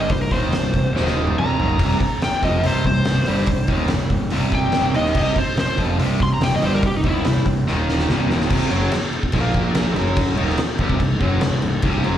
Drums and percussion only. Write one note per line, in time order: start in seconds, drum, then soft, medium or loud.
0.10 kick loud
0.10 open hi-hat medium
0.31 kick loud
0.31 open hi-hat medium
0.53 snare loud
0.53 open hi-hat medium
0.74 kick medium
0.74 open hi-hat medium
0.96 snare medium
1.07 snare medium
1.27 high tom medium
1.38 mid tom medium
1.60 floor tom loud
1.69 floor tom medium
1.79 kick loud
1.79 open hi-hat medium
1.79 crash loud
2.00 kick medium
2.00 open hi-hat medium
2.22 snare loud
2.22 open hi-hat medium
2.43 kick medium
2.43 open hi-hat medium
2.64 open hi-hat medium
2.84 kick medium
2.84 open hi-hat medium
3.05 snare loud
3.05 open hi-hat medium
3.26 open hi-hat medium
3.37 snare soft
3.46 kick loud
3.46 open hi-hat medium
3.67 kick medium
3.67 open hi-hat medium
3.88 snare loud
3.88 open hi-hat medium
4.10 kick medium
4.10 open hi-hat medium
4.30 open hi-hat medium
4.52 kick medium
4.52 open hi-hat medium
4.72 snare loud
4.72 open hi-hat medium
4.94 open hi-hat medium
5.06 snare soft
5.15 kick loud
5.15 crash loud
5.36 kick medium
5.36 open hi-hat medium
5.57 snare loud
5.57 open hi-hat medium
5.78 kick medium
5.78 open hi-hat medium
6.00 open hi-hat medium
6.20 kick medium
6.20 open hi-hat medium
6.41 snare loud
6.41 open hi-hat medium
6.62 open hi-hat medium
6.73 snare soft
6.83 kick loud
6.83 open hi-hat medium
7.03 kick medium
7.03 open hi-hat medium
7.25 snare loud
7.25 open hi-hat medium
7.46 kick medium
7.46 open hi-hat medium
7.67 snare medium
7.89 snare medium
7.98 snare medium
8.09 snare medium
8.30 snare loud
8.41 snare medium
8.50 kick loud
8.50 crash loud
8.50 crash medium
8.71 crash medium
8.92 snare loud
8.92 crash medium
9.13 crash medium
9.23 kick medium
9.32 kick loud
9.32 crash medium
9.54 kick medium
9.54 crash medium
9.75 snare loud
9.75 crash medium
9.96 snare soft
9.96 crash medium
10.16 kick loud
10.16 crash loud
10.37 crash medium
10.49 snare soft
10.58 snare loud
10.58 crash medium
10.78 kick medium
10.78 crash medium
10.90 kick medium
11.00 kick medium
11.00 crash medium
11.20 kick medium
11.20 crash medium
11.41 snare loud
11.41 crash medium
11.62 crash medium
11.82 kick loud
11.82 crash medium
12.04 crash medium